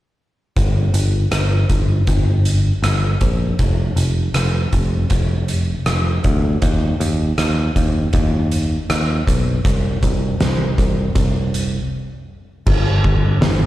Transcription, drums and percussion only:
0.56 kick medium
0.56 closed hi-hat medium
0.94 closed hi-hat medium
1.32 cross-stick medium
1.32 closed hi-hat medium
1.69 kick medium
1.69 closed hi-hat medium
2.07 kick medium
2.07 closed hi-hat medium
2.45 closed hi-hat medium
2.84 cross-stick loud
2.84 closed hi-hat medium
3.21 kick medium
3.21 closed hi-hat medium
3.59 kick loud
3.59 closed hi-hat medium
3.97 closed hi-hat medium
4.34 cross-stick medium
4.34 closed hi-hat medium
4.73 kick medium
4.73 closed hi-hat medium
5.10 kick medium
5.10 closed hi-hat medium
5.48 closed hi-hat medium
5.86 cross-stick loud
5.86 closed hi-hat medium
6.24 kick medium
6.24 closed hi-hat medium
6.62 kick loud
6.62 closed hi-hat medium
7.01 closed hi-hat medium
7.38 cross-stick medium
7.38 closed hi-hat medium
7.76 kick medium
7.76 closed hi-hat medium
8.13 kick medium
8.13 closed hi-hat medium
8.52 closed hi-hat medium
8.90 cross-stick loud
8.90 closed hi-hat medium
9.28 kick medium
9.28 closed hi-hat medium
9.65 kick loud
9.65 closed hi-hat medium
10.03 kick medium
10.03 closed hi-hat medium
10.40 snare medium
10.40 closed hi-hat medium
10.78 kick medium
10.78 closed hi-hat medium
11.15 kick medium
11.15 closed hi-hat medium
11.54 closed hi-hat medium
12.67 kick loud
12.67 crash medium
13.04 kick medium
13.42 snare loud
13.42 open hi-hat soft

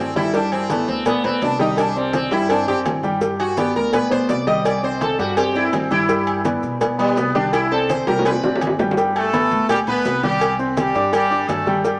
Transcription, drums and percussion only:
0.16 high conga medium
0.16 maracas soft
0.34 cowbell loud
0.34 high conga soft
0.34 maracas medium
0.52 high conga soft
0.52 low agogo loud
0.52 maracas soft
0.70 cowbell medium
0.70 high conga loud
0.70 low timbale medium
0.70 low agogo medium
0.70 maracas medium
0.88 maracas soft
1.06 cowbell loud
1.06 high conga soft
1.06 low conga medium
1.06 low agogo loud
1.06 maracas medium
1.24 high conga soft
1.24 low conga medium
1.24 low agogo medium
1.24 maracas soft
1.42 cowbell medium
1.42 high conga soft
1.42 low timbale medium
1.42 maracas medium
1.59 cowbell medium
1.59 high conga medium
1.59 maracas soft
1.77 cowbell loud
1.77 high conga soft
1.77 low agogo loud
1.77 maracas medium
1.96 high conga soft
1.96 maracas soft
2.13 cowbell medium
2.13 high conga loud
2.13 low timbale medium
2.13 low agogo medium
2.13 maracas medium
2.31 cowbell medium
2.31 maracas soft
2.49 cowbell loud
2.49 high conga soft
2.49 low agogo loud
2.49 maracas medium
2.67 high conga soft
2.67 maracas soft
2.85 cowbell medium
2.85 high conga medium
2.85 low timbale medium
2.85 low agogo loud
2.85 maracas medium
3.03 high conga medium
3.03 maracas soft
3.21 cowbell loud
3.21 high conga soft
3.21 maracas medium
3.39 high conga soft
3.39 low agogo loud
3.39 maracas soft
3.57 cowbell medium
3.57 high conga loud
3.57 low timbale medium
3.57 low agogo medium
3.57 maracas medium
3.75 maracas soft
3.93 cowbell loud
3.93 high conga soft
3.93 low conga medium
3.93 low agogo loud
3.93 maracas medium
4.11 high conga soft
4.11 low conga medium
4.11 low agogo medium
4.11 maracas soft
4.29 cowbell medium
4.29 high conga soft
4.29 low timbale medium
4.29 maracas medium
4.47 cowbell medium
4.47 high conga medium
4.47 maracas soft
4.65 cowbell loud
4.65 high conga soft
4.65 low agogo loud
4.65 maracas medium
4.83 high conga soft
4.83 maracas soft
5.01 cowbell medium
5.01 high conga medium
5.01 low timbale medium
5.01 low agogo medium
5.01 maracas medium
5.19 cowbell medium
5.19 maracas soft
5.37 cowbell loud
5.37 high conga soft
5.37 low agogo loud
5.37 maracas medium
5.55 high conga soft
5.55 maracas soft
5.73 cowbell medium
5.73 high conga medium
5.73 low timbale medium
5.73 low agogo loud
5.73 maracas medium
5.91 high conga loud
5.91 maracas soft
6.09 cowbell loud
6.09 high conga soft
6.09 maracas medium
6.27 high conga soft
6.27 low agogo loud
6.27 maracas soft
6.45 cowbell medium
6.45 high conga loud
6.45 low timbale medium
6.45 low agogo medium
6.45 maracas medium
6.63 maracas soft
6.81 cowbell loud
6.81 high conga soft
6.81 low conga medium
6.81 low agogo loud
6.81 maracas medium
6.99 high conga soft
6.99 low agogo medium
6.99 maracas soft
7.17 cowbell medium
7.17 high conga soft
7.17 low timbale medium
7.17 maracas medium
7.35 cowbell medium
7.35 high conga medium
7.35 maracas soft
7.53 cowbell loud
7.53 low agogo loud
7.53 maracas medium
7.72 high conga soft
7.72 maracas soft
7.89 cowbell medium
7.89 high conga loud
7.89 low timbale medium
7.89 low agogo medium
7.89 maracas medium
8.07 cowbell medium
8.07 high bongo medium
8.07 maracas soft
8.19 high bongo loud
8.25 cowbell loud
8.25 high conga soft
8.25 low agogo loud
8.25 maracas medium
8.31 high bongo medium
8.43 low bongo medium
8.43 high conga soft
8.43 high timbale medium
8.43 maracas soft
8.56 low bongo medium
8.61 cowbell medium
8.61 high conga medium
8.61 low agogo loud
8.61 maracas medium
8.67 low bongo medium
8.79 low bongo medium
8.79 high conga medium
8.79 low timbale loud
8.79 maracas soft
8.91 low bongo medium
8.97 cowbell loud
8.97 maracas medium
9.16 high conga soft
9.16 low agogo loud
9.16 maracas soft
9.33 cowbell medium
9.33 high conga loud
9.33 low timbale medium
9.33 low agogo loud
9.33 maracas medium
9.51 high conga soft
9.51 maracas soft
9.69 cowbell loud
9.69 high conga soft
9.69 low conga medium
9.69 low agogo loud
9.69 maracas medium
9.87 high conga soft
9.87 low conga medium
9.87 low agogo medium
9.87 maracas soft
10.05 cowbell medium
10.05 high conga soft
10.05 low timbale medium
10.05 maracas medium
10.23 cowbell medium
10.23 high conga loud
10.23 maracas soft
10.41 cowbell loud
10.41 high conga soft
10.41 low agogo loud
10.41 maracas medium
10.59 high conga soft
10.59 maracas soft
10.77 cowbell medium
10.77 high conga loud
10.77 low timbale medium
10.77 low agogo medium
10.77 maracas medium
10.95 cowbell medium
10.95 maracas soft
11.13 cowbell loud
11.13 high conga soft
11.13 low agogo loud
11.13 maracas medium
11.31 high conga soft
11.31 maracas soft
11.49 cowbell medium
11.49 high conga medium
11.49 low timbale medium
11.49 low agogo loud
11.49 maracas medium
11.67 high conga medium
11.67 maracas soft
11.85 cowbell loud
11.85 high conga soft
11.85 maracas medium

